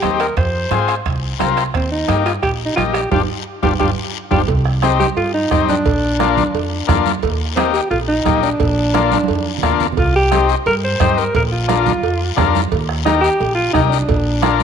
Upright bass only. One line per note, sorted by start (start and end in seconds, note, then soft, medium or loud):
0.03 0.30 D#2 medium
0.37 0.64 F2 loud
0.71 0.98 G#2 medium
1.06 1.33 C2 medium
1.40 1.67 C2 medium
1.75 2.02 D#2 loud
2.09 2.36 G2 medium
2.43 2.71 A#1 medium
2.77 3.05 A#1 medium
3.12 3.24 G1 loud
3.63 3.76 G1 medium
3.80 3.93 G1 medium
4.31 4.44 G1 loud
4.48 5.03 C2 loud
5.16 5.44 G2 medium
5.52 5.79 G2 medium
5.85 6.40 A#1 loud
6.54 6.82 F2 medium
6.88 7.16 F2 medium
7.23 7.78 D#2 loud
7.91 8.18 A#1 medium
8.26 8.53 A#1 medium
8.60 9.15 A#1 loud
9.29 9.56 F2 medium
9.63 9.91 F2 medium
9.97 10.52 C2 medium
10.66 10.93 G2 medium
11.00 11.28 G2 medium
11.35 11.89 A#1 loud
12.03 12.30 F2 medium
12.37 12.65 F2 medium
12.72 13.26 D#2 loud
13.40 13.68 A#1 medium
13.74 14.02 C2 medium
14.09 14.63 A#1 loud